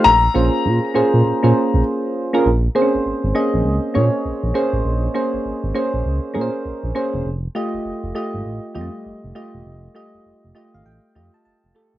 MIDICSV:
0, 0, Header, 1, 4, 480
1, 0, Start_track
1, 0, Tempo, 600000
1, 40, Time_signature, 4, 2, 24, 8
1, 9586, End_track
2, 0, Start_track
2, 0, Title_t, "Grand piano"
2, 0, Program_c, 0, 0
2, 36, Note_on_c, 0, 82, 101
2, 1446, Note_off_c, 0, 82, 0
2, 9586, End_track
3, 0, Start_track
3, 0, Title_t, "Synth keys"
3, 0, Program_c, 1, 88
3, 0, Control_c, 1, 64, 127
3, 51, Control_c, 1, 64, 0
3, 213, Control_c, 1, 64, 127
3, 274, Note_on_c, 1, 58, 80
3, 277, Note_on_c, 1, 61, 71
3, 279, Note_on_c, 1, 65, 76
3, 280, Note_on_c, 1, 68, 71
3, 283, Note_on_c, 1, 72, 88
3, 665, Note_off_c, 1, 58, 0
3, 666, Note_off_c, 1, 61, 0
3, 667, Note_off_c, 1, 65, 0
3, 668, Note_off_c, 1, 68, 0
3, 670, Note_off_c, 1, 72, 0
3, 755, Note_on_c, 1, 58, 96
3, 759, Note_on_c, 1, 61, 88
3, 760, Note_on_c, 1, 65, 86
3, 765, Note_on_c, 1, 68, 95
3, 765, Note_on_c, 1, 72, 110
3, 1034, Note_off_c, 1, 58, 0
3, 1036, Note_off_c, 1, 61, 0
3, 1037, Note_off_c, 1, 65, 0
3, 1039, Note_off_c, 1, 72, 0
3, 1040, Note_off_c, 1, 68, 0
3, 1142, Note_on_c, 1, 58, 91
3, 1146, Note_on_c, 1, 61, 83
3, 1149, Note_on_c, 1, 65, 83
3, 1152, Note_on_c, 1, 68, 78
3, 1154, Note_on_c, 1, 72, 98
3, 1671, Note_off_c, 1, 58, 0
3, 1673, Note_off_c, 1, 61, 0
3, 1675, Note_off_c, 1, 65, 0
3, 1676, Note_off_c, 1, 68, 0
3, 1677, Note_off_c, 1, 72, 0
3, 1866, Note_on_c, 1, 58, 100
3, 1869, Note_on_c, 1, 61, 95
3, 1872, Note_on_c, 1, 65, 92
3, 1872, Note_on_c, 1, 68, 88
3, 1877, Note_on_c, 1, 70, 112
3, 1959, Note_off_c, 1, 58, 0
3, 1961, Note_off_c, 1, 61, 0
3, 1962, Note_off_c, 1, 65, 0
3, 1962, Note_off_c, 1, 68, 0
3, 1965, Note_off_c, 1, 70, 0
3, 1971, Control_c, 1, 64, 0
3, 2105, Control_c, 1, 64, 127
3, 2199, Note_on_c, 1, 58, 95
3, 2203, Note_on_c, 1, 60, 70
3, 2203, Note_on_c, 1, 68, 84
3, 2205, Note_on_c, 1, 72, 112
3, 2252, Note_on_c, 1, 61, 85
3, 2266, Note_off_c, 1, 60, 0
3, 2588, Note_off_c, 1, 58, 0
3, 2590, Note_off_c, 1, 68, 0
3, 2590, Note_off_c, 1, 72, 0
3, 2614, Note_off_c, 1, 61, 0
3, 2677, Note_on_c, 1, 58, 95
3, 2679, Note_on_c, 1, 61, 91
3, 2681, Note_on_c, 1, 68, 93
3, 2685, Note_on_c, 1, 75, 106
3, 3067, Note_off_c, 1, 58, 0
3, 3068, Note_off_c, 1, 61, 0
3, 3068, Note_off_c, 1, 68, 0
3, 3070, Note_off_c, 1, 75, 0
3, 3152, Note_on_c, 1, 58, 85
3, 3157, Note_on_c, 1, 61, 79
3, 3158, Note_on_c, 1, 68, 78
3, 3161, Note_on_c, 1, 73, 97
3, 3544, Note_off_c, 1, 58, 0
3, 3546, Note_off_c, 1, 61, 0
3, 3547, Note_off_c, 1, 68, 0
3, 3548, Note_off_c, 1, 73, 0
3, 3634, Note_on_c, 1, 58, 100
3, 3639, Note_on_c, 1, 61, 96
3, 3640, Note_on_c, 1, 68, 93
3, 3641, Note_on_c, 1, 72, 121
3, 4025, Note_off_c, 1, 58, 0
3, 4027, Note_off_c, 1, 61, 0
3, 4028, Note_off_c, 1, 68, 0
3, 4029, Note_off_c, 1, 72, 0
3, 4114, Note_on_c, 1, 58, 98
3, 4117, Note_on_c, 1, 61, 84
3, 4119, Note_on_c, 1, 68, 90
3, 4125, Note_on_c, 1, 72, 99
3, 4505, Note_off_c, 1, 58, 0
3, 4506, Note_off_c, 1, 61, 0
3, 4507, Note_off_c, 1, 68, 0
3, 4510, Note_off_c, 1, 72, 0
3, 4596, Note_on_c, 1, 58, 99
3, 4597, Note_on_c, 1, 61, 92
3, 4602, Note_on_c, 1, 68, 92
3, 4604, Note_on_c, 1, 72, 111
3, 4986, Note_off_c, 1, 58, 0
3, 4986, Note_off_c, 1, 61, 0
3, 4989, Note_off_c, 1, 68, 0
3, 4990, Note_off_c, 1, 72, 0
3, 5069, Note_on_c, 1, 58, 87
3, 5075, Note_on_c, 1, 61, 82
3, 5077, Note_on_c, 1, 68, 83
3, 5081, Note_on_c, 1, 70, 74
3, 5130, Note_on_c, 1, 72, 99
3, 5145, Note_off_c, 1, 70, 0
3, 5463, Note_off_c, 1, 58, 0
3, 5465, Note_off_c, 1, 61, 0
3, 5466, Note_off_c, 1, 68, 0
3, 5493, Note_off_c, 1, 72, 0
3, 5559, Note_on_c, 1, 58, 101
3, 5559, Note_on_c, 1, 61, 100
3, 5563, Note_on_c, 1, 68, 93
3, 5566, Note_on_c, 1, 72, 111
3, 5799, Note_off_c, 1, 58, 0
3, 5800, Note_off_c, 1, 61, 0
3, 5802, Note_off_c, 1, 68, 0
3, 5803, Note_off_c, 1, 72, 0
3, 5810, Control_c, 1, 64, 0
3, 5963, Control_c, 1, 64, 127
3, 6039, Note_on_c, 1, 57, 103
3, 6041, Note_on_c, 1, 65, 95
3, 6044, Note_on_c, 1, 67, 95
3, 6049, Note_on_c, 1, 75, 110
3, 6428, Note_off_c, 1, 57, 0
3, 6429, Note_off_c, 1, 65, 0
3, 6430, Note_off_c, 1, 67, 0
3, 6432, Note_off_c, 1, 75, 0
3, 6519, Note_on_c, 1, 57, 102
3, 6523, Note_on_c, 1, 65, 90
3, 6523, Note_on_c, 1, 67, 95
3, 6527, Note_on_c, 1, 75, 113
3, 6907, Note_off_c, 1, 57, 0
3, 6909, Note_off_c, 1, 65, 0
3, 6909, Note_off_c, 1, 67, 0
3, 6912, Note_off_c, 1, 75, 0
3, 6996, Note_on_c, 1, 55, 72
3, 6998, Note_on_c, 1, 65, 81
3, 7001, Note_on_c, 1, 67, 79
3, 7003, Note_on_c, 1, 75, 97
3, 7049, Note_on_c, 1, 57, 88
3, 7062, Note_off_c, 1, 55, 0
3, 7387, Note_off_c, 1, 65, 0
3, 7389, Note_off_c, 1, 67, 0
3, 7390, Note_off_c, 1, 75, 0
3, 7413, Note_off_c, 1, 57, 0
3, 7481, Note_on_c, 1, 57, 100
3, 7483, Note_on_c, 1, 65, 93
3, 7484, Note_on_c, 1, 67, 96
3, 7487, Note_on_c, 1, 75, 110
3, 7868, Note_off_c, 1, 57, 0
3, 7869, Note_off_c, 1, 65, 0
3, 7870, Note_off_c, 1, 67, 0
3, 7871, Note_off_c, 1, 75, 0
3, 7958, Note_on_c, 1, 57, 92
3, 7963, Note_on_c, 1, 65, 82
3, 7965, Note_on_c, 1, 67, 86
3, 7970, Note_on_c, 1, 75, 106
3, 8347, Note_off_c, 1, 57, 0
3, 8349, Note_off_c, 1, 65, 0
3, 8351, Note_off_c, 1, 67, 0
3, 8353, Note_off_c, 1, 75, 0
3, 8438, Note_on_c, 1, 57, 102
3, 8442, Note_on_c, 1, 65, 85
3, 8443, Note_on_c, 1, 75, 74
3, 8446, Note_on_c, 1, 67, 88
3, 8451, Note_off_c, 1, 75, 0
3, 8451, Note_on_c, 1, 75, 112
3, 8595, Note_on_c, 1, 77, 75
3, 8677, Note_off_c, 1, 77, 0
3, 8686, Note_on_c, 1, 79, 79
3, 8827, Note_off_c, 1, 57, 0
3, 8829, Note_off_c, 1, 65, 0
3, 8831, Note_off_c, 1, 67, 0
3, 8833, Note_off_c, 1, 75, 0
3, 8922, Note_on_c, 1, 57, 79
3, 8925, Note_on_c, 1, 65, 84
3, 8928, Note_on_c, 1, 67, 77
3, 8930, Note_on_c, 1, 75, 92
3, 9044, Note_off_c, 1, 79, 0
3, 9072, Note_on_c, 1, 81, 69
3, 9152, Note_off_c, 1, 81, 0
3, 9162, Note_on_c, 1, 81, 77
3, 9309, Note_off_c, 1, 57, 0
3, 9310, Note_off_c, 1, 65, 0
3, 9312, Note_off_c, 1, 67, 0
3, 9313, Note_off_c, 1, 75, 0
3, 9398, Note_on_c, 1, 57, 97
3, 9401, Note_on_c, 1, 65, 89
3, 9405, Note_on_c, 1, 67, 90
3, 9406, Note_on_c, 1, 69, 111
3, 9586, Note_off_c, 1, 57, 0
3, 9586, Note_off_c, 1, 65, 0
3, 9586, Note_off_c, 1, 67, 0
3, 9586, Note_off_c, 1, 69, 0
3, 9586, Note_off_c, 1, 81, 0
3, 9586, End_track
4, 0, Start_track
4, 0, Title_t, "Analog synth bass"
4, 0, Program_c, 2, 38
4, 43, Note_on_c, 2, 34, 123
4, 228, Note_off_c, 2, 34, 0
4, 284, Note_on_c, 2, 34, 117
4, 397, Note_off_c, 2, 34, 0
4, 523, Note_on_c, 2, 46, 106
4, 637, Note_off_c, 2, 46, 0
4, 763, Note_on_c, 2, 46, 51
4, 821, Note_off_c, 2, 46, 0
4, 910, Note_on_c, 2, 46, 107
4, 980, Note_off_c, 2, 46, 0
4, 1004, Note_on_c, 2, 46, 47
4, 1062, Note_off_c, 2, 46, 0
4, 1150, Note_on_c, 2, 46, 92
4, 1221, Note_off_c, 2, 46, 0
4, 1392, Note_on_c, 2, 34, 95
4, 1462, Note_off_c, 2, 34, 0
4, 1965, Note_on_c, 2, 34, 108
4, 2149, Note_off_c, 2, 34, 0
4, 2356, Note_on_c, 2, 32, 51
4, 2391, Note_off_c, 2, 32, 0
4, 2445, Note_on_c, 2, 32, 50
4, 2503, Note_off_c, 2, 32, 0
4, 2591, Note_on_c, 2, 32, 94
4, 2662, Note_off_c, 2, 32, 0
4, 2829, Note_on_c, 2, 34, 100
4, 2900, Note_off_c, 2, 34, 0
4, 2919, Note_on_c, 2, 37, 88
4, 3035, Note_off_c, 2, 37, 0
4, 3163, Note_on_c, 2, 46, 101
4, 3277, Note_off_c, 2, 46, 0
4, 3400, Note_on_c, 2, 34, 53
4, 3459, Note_off_c, 2, 34, 0
4, 3547, Note_on_c, 2, 34, 84
4, 3619, Note_off_c, 2, 34, 0
4, 3785, Note_on_c, 2, 33, 106
4, 3858, Note_off_c, 2, 33, 0
4, 3880, Note_on_c, 2, 34, 127
4, 4066, Note_off_c, 2, 34, 0
4, 4269, Note_on_c, 2, 32, 47
4, 4305, Note_off_c, 2, 32, 0
4, 4362, Note_on_c, 2, 32, 45
4, 4421, Note_off_c, 2, 32, 0
4, 4510, Note_on_c, 2, 32, 75
4, 4580, Note_off_c, 2, 32, 0
4, 4750, Note_on_c, 2, 34, 91
4, 4821, Note_off_c, 2, 34, 0
4, 4841, Note_on_c, 2, 37, 95
4, 4956, Note_off_c, 2, 37, 0
4, 5083, Note_on_c, 2, 46, 115
4, 5197, Note_off_c, 2, 46, 0
4, 5320, Note_on_c, 2, 34, 51
4, 5380, Note_off_c, 2, 34, 0
4, 5467, Note_on_c, 2, 34, 94
4, 5539, Note_off_c, 2, 34, 0
4, 5710, Note_on_c, 2, 28, 89
4, 5781, Note_off_c, 2, 28, 0
4, 5798, Note_on_c, 2, 29, 106
4, 5985, Note_off_c, 2, 29, 0
4, 6190, Note_on_c, 2, 29, 48
4, 6226, Note_off_c, 2, 29, 0
4, 6281, Note_on_c, 2, 29, 50
4, 6340, Note_off_c, 2, 29, 0
4, 6429, Note_on_c, 2, 29, 77
4, 6500, Note_off_c, 2, 29, 0
4, 6670, Note_on_c, 2, 32, 105
4, 6741, Note_off_c, 2, 32, 0
4, 6764, Note_on_c, 2, 33, 89
4, 6877, Note_off_c, 2, 33, 0
4, 7002, Note_on_c, 2, 41, 107
4, 7116, Note_off_c, 2, 41, 0
4, 7245, Note_on_c, 2, 29, 49
4, 7303, Note_off_c, 2, 29, 0
4, 7393, Note_on_c, 2, 29, 92
4, 7462, Note_off_c, 2, 29, 0
4, 7635, Note_on_c, 2, 28, 88
4, 7704, Note_off_c, 2, 28, 0
4, 7727, Note_on_c, 2, 29, 107
4, 7910, Note_off_c, 2, 29, 0
4, 8113, Note_on_c, 2, 29, 46
4, 8148, Note_off_c, 2, 29, 0
4, 8206, Note_on_c, 2, 29, 47
4, 8264, Note_off_c, 2, 29, 0
4, 8355, Note_on_c, 2, 29, 81
4, 8424, Note_off_c, 2, 29, 0
4, 8593, Note_on_c, 2, 32, 98
4, 8662, Note_off_c, 2, 32, 0
4, 8682, Note_on_c, 2, 33, 92
4, 8796, Note_off_c, 2, 33, 0
4, 8925, Note_on_c, 2, 41, 111
4, 9038, Note_off_c, 2, 41, 0
4, 9166, Note_on_c, 2, 29, 51
4, 9223, Note_off_c, 2, 29, 0
4, 9311, Note_on_c, 2, 29, 95
4, 9381, Note_off_c, 2, 29, 0
4, 9551, Note_on_c, 2, 28, 90
4, 9586, Note_off_c, 2, 28, 0
4, 9586, End_track
0, 0, End_of_file